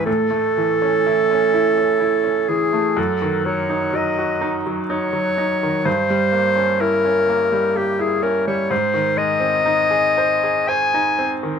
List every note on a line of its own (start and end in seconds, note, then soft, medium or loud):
0.06 2.93 A2 medium
0.06 2.50 A4 medium
0.31 0.72 A3 soft
0.57 0.97 E3 soft
0.82 1.21 C#4 soft
1.07 1.45 E4 soft
1.31 1.69 C#4 soft
1.53 1.92 E4 soft
1.78 2.16 C#4 soft
2.00 2.39 E4 soft
2.24 2.63 C#4 soft
2.48 2.88 E3 soft
2.48 3.01 G#4 medium
2.73 2.97 A3 soft
2.97 5.82 F#2 medium
2.97 3.47 A4 medium
3.22 3.61 D#3 soft
3.45 3.85 F#3 soft
3.45 3.97 C#5 medium
3.70 4.09 D#4 soft
3.93 4.32 F#3 soft
3.93 4.64 D#5 medium
4.19 4.57 F#4 soft
4.41 4.80 D#4 soft
4.66 5.05 F#3 soft
4.90 5.29 D#4 soft
4.90 5.87 C#5 medium
5.13 5.52 F#3 soft
5.38 5.77 D#4 soft
5.63 5.87 D#3 soft
5.85 8.66 G2 medium
5.85 6.83 C5 medium
6.10 6.48 G3 soft
6.32 6.71 A#3 soft
6.56 6.95 C#4 soft
6.80 7.19 E4 medium
6.80 7.78 A#4 medium
7.05 7.43 C#4 soft
7.29 7.67 A#3 soft
7.52 7.90 G3 soft
7.75 8.14 A#3 soft
7.75 8.02 G4 medium
7.99 8.37 E4 soft
7.99 8.24 G#4 medium
8.23 8.61 C#4 soft
8.23 8.47 A#4 medium
8.47 8.71 G3 soft
8.47 8.72 C#5 medium
8.70 11.59 G#2 medium
8.70 9.19 C5 medium
8.94 9.32 D#3 soft
9.17 9.56 G#3 soft
9.17 10.70 D#5 medium
9.40 9.80 C4 soft
9.66 10.07 D#4 soft
9.91 10.34 G#4 soft
10.18 10.60 C5 soft
10.44 10.85 G#4 soft
10.68 11.09 C5 soft
10.68 11.39 G#5 medium
10.94 11.33 D#4 soft
11.18 11.57 C4 soft
11.43 11.59 D#3 soft